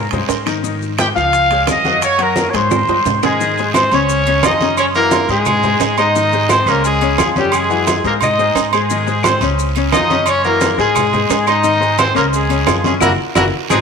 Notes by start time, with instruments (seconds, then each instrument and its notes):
0.11 upright bass G2, upright piano G#3 G#4 C5, high conga, low conga, high timbale, maracas
0.29 upright bass G#2, high conga, low timbale, short guiro, maracas
0.46 upright piano D#3 D#4 D#5, high conga, high timbale, short guiro, claves, maracas
0.63 upright piano D#3 D#4 D#5, high conga, long guiro, maracas
0.81 high conga, maracas
0.98 upright piano G#3 G#4 C5, trumpet section G4 G5, high conga, high timbale, low timbale, short guiro, claves, maracas
1.15 upright bass C#2, upright piano F3 F4 F5, trumpet section F5, short guiro, maracas
1.32 high conga, high timbale, long guiro, maracas
1.50 upright piano G#3 G#4 C#5, high conga, high timbale, maracas
1.67 upright bass F#2, trumpet section D#5 D#6, high conga, high timbale, low timbale, short guiro, claves, maracas
1.85 upright piano F#3 F#4 F#5, high conga, short guiro, maracas
2.02 trumpet section C#5 C#6, high conga, high timbale, long guiro, claves, maracas
2.19 upright piano F#3 F#4 F#5, trumpet section A#4 A#5, high conga, high timbale, maracas
2.36 upright piano A#3 A#4 C#5, high conga, low timbale, short guiro, maracas
2.50 trumpet section C#5, short guiro
2.54 upright bass G#2, upright piano G#3 G#4 C5, trumpet section C5 C6, high conga, high timbale, maracas
2.71 high conga, high timbale, long guiro, claves, maracas
2.88 upright bass G2, upright piano G#3 G#4 C5, high timbale, maracas
3.05 upright bass G#2, low conga, low timbale, short guiro, maracas
3.23 upright piano D#3 D#4 D#5, horn section G#3 G#4, low conga, low timbale, short guiro, claves, maracas
3.40 upright piano D#3 D#4 D#5, high conga, long guiro, maracas
3.57 upright piano G#3 G#4 C5, high conga, maracas
3.74 horn section C4 C5, high conga, low timbale, low agogo, short guiro, claves, maracas
3.91 upright bass C#2, upright piano C#3 C#4 C#5, horn section C#4 C#5, low agogo, short guiro, maracas
4.09 high conga, long guiro, maracas
4.26 upright piano C#3 C#4 C#5, high conga, low agogo, maracas
4.43 upright bass F#2, upright piano F3 F4 G#4, horn section D#4 D#5, high conga, low timbale, low agogo, short guiro, claves, maracas
4.61 upright piano C#3 C#4 C#5, high conga, short guiro, maracas
4.77 horn section C#4 C#5, high conga, low agogo, claves, maracas
4.95 upright piano E3 E4 F#4, horn section A#3 A#4, high conga, maracas
5.11 high conga, low timbale, low agogo, short guiro, maracas
5.28 upright bass G#2, upright piano G#3 G#4 C5, horn section G#3 G#4, high conga, short guiro, maracas
5.46 high conga, low conga, low agogo, long guiro, claves, maracas
5.63 upright piano G#3 G#4 C5, high conga, low conga, maracas
5.80 upright bass G#2, high conga, low timbale, low agogo, short guiro, maracas
5.97 upright piano G#3 G#4 C5, horn section D#4 D#5, high conga, low agogo, short guiro, claves, maracas
6.15 upright piano D#3 D#4 D#5, high conga, long guiro, maracas
6.32 upright piano G#3 G#4 C5, high conga, maracas
6.49 horn section C4 C5, high conga, low timbale, low agogo, short guiro, claves, maracas
6.66 upright bass C#2, upright piano C#3 C#4 C#5, horn section A#3 A#4, low agogo, short guiro, maracas
6.84 horn section G#3 G#4, high conga, long guiro, maracas
7.01 upright piano C#3 C#4 C#5, high conga, low agogo, maracas
7.18 upright bass F#2, upright piano F3 F4 G#4, high conga, low timbale, low agogo, short guiro, claves, maracas
7.36 upright piano C#3 C#4 C#5, horn section G3 G4, high conga, short guiro, maracas
7.52 horn section G#3 G#4, high conga, low agogo, long guiro, claves, maracas
7.70 upright piano E3 E4 F#4, high conga, maracas
7.87 high conga, low timbale, low agogo, short guiro, maracas
8.04 upright bass G#2, upright piano G#3 G#4 C5, horn section A#3 A#4, high conga, short guiro, maracas
8.21 horn section D#4 D#5, high conga, low conga, low agogo, long guiro, claves, maracas
8.38 upright piano G#3 G#4 C5, high conga, maracas
8.55 upright bass G#2, high conga, low timbale, low agogo, short guiro, maracas
8.73 upright piano G#3 G#4 C5, horn section G#3 G#4, high conga, low agogo, short guiro, claves, maracas
8.90 upright piano D#3 D#4 D#5, high conga, long guiro, maracas
9.07 upright piano G#3 G#4 C5, high conga, maracas
9.23 horn section C4 C5, high conga, low timbale, low agogo, short guiro, claves, maracas
9.41 upright bass C#2, upright piano C#3 C#4 C#5, low agogo, short guiro, maracas
9.58 high conga, long guiro, maracas
9.76 upright piano C#3 C#4 C#5, high conga, low agogo, maracas
9.92 upright bass F#2, upright piano F3 F4 G#4, horn section D#4 D#5, high conga, low timbale, low agogo, short guiro, claves, maracas
10.10 upright piano C#3 C#4 C#5, high conga, short guiro, maracas
10.26 horn section C#4 C#5, high conga, low agogo, long guiro, claves, maracas
10.44 upright piano E3 E4 F#4, horn section A#3 A#4, high conga, maracas
10.61 high conga, low timbale, low agogo, short guiro, maracas
10.78 upright bass G#2, upright piano G#3 G#4 C5, horn section G#3 G#4, high conga, short guiro, maracas
10.95 high conga, low conga, low agogo, long guiro, claves, maracas
11.13 upright piano G#3 G#4 C5, high conga, low conga, maracas
11.30 upright bass G#2, high conga, low timbale, low agogo, short guiro, maracas
11.47 upright piano G#3 G#4 C5, horn section D#4 D#5, high conga, low agogo, short guiro, claves, maracas
11.64 upright piano D#3 D#4 D#5, high conga, long guiro, maracas
11.80 upright piano G#3 G#4 C5, high conga, maracas
11.99 horn section C4 C5, high conga, low timbale, low agogo, short guiro, claves, maracas
12.15 upright bass C#2, upright piano C#3 C#4 C#5, horn section A#3 A#4, low agogo, short guiro, maracas
12.33 horn section G#3 G#4, high conga, long guiro, maracas
12.49 upright piano C#3 C#4 C#5, high conga, low agogo, maracas
12.66 upright bass F#2, upright piano F3 F4 G#4, high conga, low timbale, low agogo, short guiro, claves, maracas
12.84 upright piano C#3 C#4 C#5, horn section G#3 G#4, high conga, short guiro, maracas
13.00 upright bass F#1, horn section A#3 E4 F#4 A#4, upright piano E4 F#4 A#4, high conga, high timbale, long guiro, claves, maracas
13.35 upright bass F#1, horn section A#3 E4 F#4 A#4, upright piano E4 F#4 A#4, high conga, high timbale, long guiro, claves, maracas
13.70 upright bass G#1, horn section G#3 C4 D#4 G#4, upright piano C4 D#4 G#4, high conga, high timbale, claves, maracas